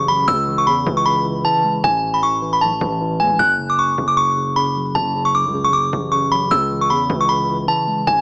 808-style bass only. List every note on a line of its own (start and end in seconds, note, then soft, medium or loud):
0.00 0.26 A1 loud
0.28 0.68 C#2 loud
0.67 0.85 E2 loud
0.86 1.43 C#2 loud
1.84 2.63 A1 loud
2.62 2.73 B1 loud
2.72 2.81 A1 loud
2.81 3.21 A1 loud
3.20 3.32 E2 loud
3.30 3.39 A1 loud
3.40 3.96 F#1 loud
3.98 4.92 F#1 loud
4.95 5.46 F#1 loud
5.45 5.70 C#2 loud
5.69 5.92 F#1 medium
5.93 6.49 A1 loud
6.51 6.92 C#2 loud
6.90 7.09 E2 loud
7.10 7.66 C#2 loud
8.07 8.21 A1 loud